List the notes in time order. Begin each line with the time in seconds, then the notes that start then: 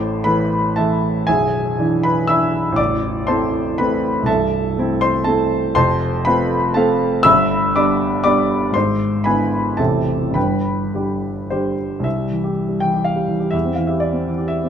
Already playing: A1 A2 C5 A5 C6
0.24 E3 A3 E4 B4 B5
0.76 E3 A3 E4 A4 E5 A5
1.27 B0 B1 G#4 E5 G#5
1.79 E3 D4 E4
2.03 B4 B5
2.27 E3 D4 E4 E5 B5 E6
2.72 A1
2.76 A0 D5 D6
3.27 A3 C4 E4 C5 A5 C6
3.78 A3 C4 E4 B4 B5
4.23 C2 A5
4.27 C1 A4 E5
4.78 A3 C4 E4
5.01 C5 C6
5.24 A3 C4 E4 A4 A5
5.75 F1 F2 C5 A5 C6
6.25 A3 C4 F4 B4 B5
6.74 A3 C4 F4 A4 F5 A5
7.23 G1 G2 E5 B5 E6
7.76 G3 B3 D4 D5 B5 D6
8.24 G3 B3 D4 D5 B5 D6
8.71 G#2 C6
8.75 G#1 C5
9.24 D3 B3 E4 B4 G#5 B5
9.77 A0 A1 C3 C4 E4 A4 E5 A5
10.30 G2 B5
10.35 G1 B4 G5
10.94 D3 G3 G4
11.50 D3 G3 G4 C5
12.00 C2
12.04 E5
12.18 G3
12.31 E3
12.44 G4
12.69 G3
12.80 E3 G5
12.94 G4
13.04 F5
13.16 G3
13.28 E3
13.40 G4
13.51 E2 E5
13.65 C4
13.75 E3 F5
13.87 G4 E5
14.00 D5
14.13 C4
14.27 E3
14.38 G4
14.48 E5
14.63 C4